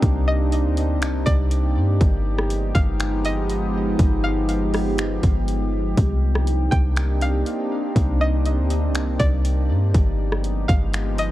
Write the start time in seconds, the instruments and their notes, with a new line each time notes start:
Already playing: ambient pad A#3 C4 D4 D#4 G4
0.03 808-style bass C2, kick, closed hi-hat
0.28 synth pluck D#5
0.52 closed hi-hat
0.65 808-style bass D2
0.77 closed hi-hat
0.96 808-style bass C2
1.02 finger snap, closed hi-hat
1.26 808-style bass C2, synth pluck D5, kick, closed hi-hat
1.51 closed hi-hat
1.76 808-style bass G2
2.01 808-style bass G1, ambient pad F3 G#3 B3 D#4, kick, closed hi-hat
2.39 cross-stick
2.50 closed hi-hat
2.75 808-style bass G1, synth pluck F5, kick, closed hi-hat
3.00 finger snap, closed hi-hat
3.25 synth pluck D#5, closed hi-hat
3.50 closed hi-hat
3.99 808-style bass G1, kick, closed hi-hat
4.24 synth pluck F5
4.49 closed hi-hat
4.74 cross-stick, open hi-hat
4.98 finger snap, closed hi-hat
5.23 808-style bass G1, kick, closed hi-hat
5.48 closed hi-hat
5.98 808-style bass C2, ambient pad A#3 C4 D4 D#4, kick, closed hi-hat
6.35 cross-stick
6.47 closed hi-hat
6.71 808-style bass C2, synth pluck G5, kick, closed hi-hat
6.96 finger snap, closed hi-hat
7.21 synth pluck F5, closed hi-hat
7.46 closed hi-hat
7.96 808-style bass C2, kick, closed hi-hat
8.21 synth pluck D#5
8.46 closed hi-hat
8.58 808-style bass D2
8.70 closed hi-hat
8.89 808-style bass C2
8.95 finger snap, closed hi-hat
9.20 808-style bass C2, synth pluck D5, kick, closed hi-hat
9.45 closed hi-hat
9.70 808-style bass G2
9.94 808-style bass G1, ambient pad F3 G#3 B3 D#4 G4, kick, closed hi-hat
10.32 cross-stick
10.44 closed hi-hat
10.68 808-style bass G1, synth pluck F5, kick, closed hi-hat
10.93 finger snap, closed hi-hat
11.18 synth pluck D#5, closed hi-hat